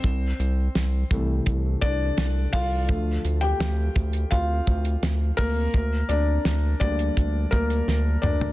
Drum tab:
HH |x-x-x-x-x-x-x-o-|x-x-x-xxx-xxx-o-|x-x-x-xxx-xx----|
SD |----o-------o-o-|----o-------o-o-|----o-------o---|
T2 |----------------|----------------|--------------o-|
FT |----------------|----------------|---------------o|
BD |o-----o-o-o---o-|o-----o-o-o---o-|o-----o-o-o-----|